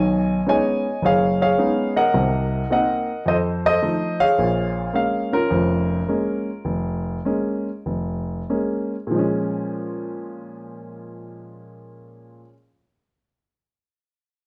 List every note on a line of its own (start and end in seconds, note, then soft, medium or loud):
0.00 0.39 B1 medium
0.00 0.39 D#3 medium
0.00 0.47 C#5 medium
0.00 0.48 D#5 medium
0.00 0.44 G#5 loud
0.46 0.85 G#3 medium
0.46 0.85 B3 soft
0.46 0.85 C#4 medium
0.46 0.86 D#4 medium
0.46 1.04 C#5 medium
0.46 1.55 D#5 medium
0.46 1.05 G#5 medium
1.02 1.51 F#1 medium
1.02 1.40 G#4 medium
1.02 1.40 C#5 medium
1.02 1.41 F5 loud
1.42 2.11 G#4 medium
1.42 2.11 C#5 medium
1.42 1.93 F5 loud
1.58 1.97 G#3 medium
1.58 1.97 B3 soft
1.58 1.97 C#4 medium
1.58 1.98 D#4 medium
1.96 2.71 A#4 medium
1.96 2.71 D#5 medium
1.96 2.71 F#5 loud
2.14 2.63 C2 medium
2.14 2.62 C3 medium
2.70 3.09 A#3 medium
2.70 3.09 C4 soft
2.70 3.09 D#4 medium
2.70 3.23 A#4 medium
2.70 3.23 D#5 medium
2.70 3.29 F#5 medium
3.26 3.74 F2 medium
3.26 3.64 A4 medium
3.26 3.64 C5 medium
3.26 3.36 D#5 medium
3.66 4.35 A4 medium
3.66 4.35 C5 medium
3.66 4.22 D#5 loud
3.82 4.21 F3 medium
3.82 4.21 A3 soft
3.82 4.21 D#4 medium
4.20 5.28 G#4 medium
4.20 5.28 C#5 medium
4.20 4.94 F5 loud
4.38 4.87 A#1 medium
4.38 4.87 A#2 medium
4.93 5.33 G#3 medium
4.93 5.33 A#3 soft
4.93 5.31 C#4 medium
4.93 5.33 F5 medium
5.32 6.08 C#4 medium
5.32 8.45 F4 medium
5.32 8.45 A#4 medium
5.50 6.00 F1 medium
5.50 6.00 F2 medium
6.09 6.49 G#3 medium
6.09 6.49 A#3 medium
6.09 6.49 C#4 medium
6.65 7.17 F1 medium
7.25 7.68 G#3 medium
7.25 7.68 A#3 soft
7.25 7.68 C#4 medium
7.86 8.40 F1 medium
8.50 8.94 G#3 medium
8.50 8.94 A#3 medium
8.50 8.94 C#4 medium
9.07 12.41 A#2 medium
9.07 12.45 F3 medium
9.15 12.49 G#3 medium
9.15 12.53 C#4 medium